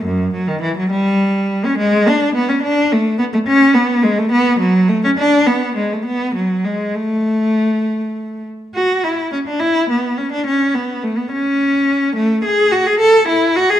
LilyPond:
\new Staff \with { instrumentName = "Cello" } { \time 6/8 \key g \lydian \tempo 4. = 70 fis,8 fis16 ees16 e16 fis16 g4~ g16 cis'16 | \key a \major gis8 d'8 b16 cis'16 d'8 a8 b16 a16 | cis'8 b8 gis16 a16 b8 fis8 a16 cis'16 | d'8 b8 gis16 a16 b8 fis8 gis8 |
a2~ a8 r8 | fis'8 e'8 cis'16 d'16 e'8 b8 cis'16 d'16 | cis'8 b8 a16 b16 cis'4. | a8 gis'8 fis'16 gis'16 a'8 e'8 fis'16 gis'16 | }